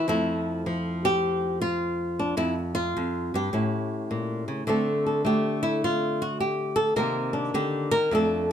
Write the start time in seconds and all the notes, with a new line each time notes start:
0.08 F2 F3 A3 E4
0.66 F3
1.05 G4
1.61 F4
2.19 D4
2.37 F2 E4
2.75 F4
2.97 F2
3.34 G2 G4
3.53 A2 C#4 E4
4.11 A#2
4.48 C#3
4.67 D3 A3 C4 A4
5.06 A4
5.25 A3 G4
5.63 E4
5.84 F4
6.22 F#4
6.40 G4
6.76 A4
6.96 C3 D#3 A#3 C4 A#4
7.33 D4
7.54 D3 G4
7.91 D#3 A#4
8.11 F2 A3 D4 A4